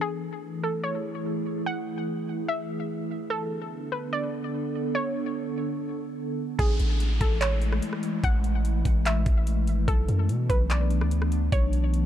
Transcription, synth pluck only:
0.01 G#4
0.64 A4
0.84 C#5
1.66 F#5
2.48 E5
3.30 A4
3.92 B4
4.13 D5
4.95 C#5
6.59 G#4
7.21 A4
7.41 C#5
8.24 F#5
9.06 E5
9.88 A4
10.50 B4
10.70 D5
11.52 C#5

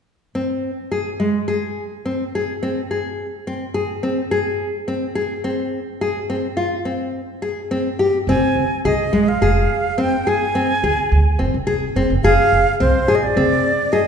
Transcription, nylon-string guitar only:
0.35 C4
0.92 G#4
1.20 G#3
1.48 G#4
2.06 C4
2.35 G#4
2.63 C4
2.91 G#4
3.47 C4
3.74 G#4
4.03 C4
4.31 G#4
4.88 C4
5.15 G#4
5.44 C4
6.01 G#4
6.30 C4
6.57 F4
6.85 C4
7.42 G#4
7.71 C4
7.99 G4
8.29 C4
8.85 G#4
9.13 G#3
9.42 G#4
9.98 C4
10.27 G#4
10.55 C4
10.84 G#4
11.39 C4
11.67 G#4
11.96 C4
12.24 G#4
12.80 C4
13.08 G#4
13.37 C4
13.93 G#4

